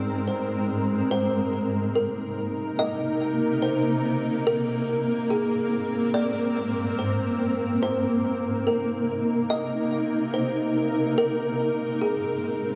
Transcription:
0.00 1.08 G#2 medium
0.00 1.08 G#3 medium
0.00 1.08 C4 medium
0.00 1.08 A#4 medium
0.00 0.23 D5 loud
0.28 1.07 C5 medium
1.11 4.44 C3 medium
1.11 11.14 A#3 medium
1.11 4.44 D#4 medium
1.11 4.43 A#4 medium
1.11 1.91 C5 loud
1.95 2.35 A#4 medium
2.79 3.59 D#5 loud
3.62 4.02 C5 medium
4.47 7.79 G#2 medium
4.47 7.79 C4 medium
4.47 12.75 A#4 medium
4.47 5.27 A#4 loud
5.30 5.70 G#4 medium
6.14 6.94 D5 loud
6.99 7.79 C5 medium
7.82 11.15 C3 medium
7.82 11.15 D#4 medium
7.82 8.63 C5 loud
8.67 9.06 A#4 medium
9.50 10.30 D#5 loud
10.34 10.73 C5 medium
11.18 12.75 G#2 medium
11.18 12.75 G#3 medium
11.18 12.75 C4 medium
11.18 11.98 A#4 loud
12.01 12.41 G#4 medium

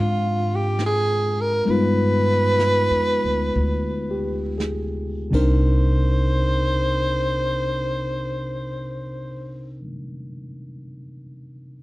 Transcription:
0.00 1.62 G#2 medium
0.00 1.64 G#3 soft
0.00 1.67 C4 soft
0.00 1.67 D4 soft
0.00 0.57 F4 medium
0.00 1.67 F4 medium
0.56 0.82 G4 medium
0.79 snare soft
0.79 hi-hat pedal soft
0.86 1.42 G#4 medium
1.41 1.66 A#4 medium
1.65 2.87 G2 medium
1.65 5.32 G#3 soft
1.65 5.33 B3 soft
1.65 5.32 D#4 soft
1.65 1.72 A#4 medium
1.65 brush sweep soft
1.70 5.35 F4 medium
1.70 4.62 B4 medium
2.59 snare soft
2.59 hi-hat pedal medium
2.90 3.21 F2 soft
3.24 3.54 D2 medium
3.55 5.29 D2 medium
3.55 brush sweep soft
4.11 4.86 G4 soft
4.58 5.28 G#4 soft
4.58 snare soft
4.58 hi-hat pedal medium
5.31 9.78 C2 medium
5.31 9.79 C3 medium
5.31 9.81 C4 medium
5.31 9.82 D4 soft
5.31 9.82 D#4 soft
5.31 kick soft
5.31 crash medium
5.35 9.83 A#4 medium
5.35 9.80 C5 medium

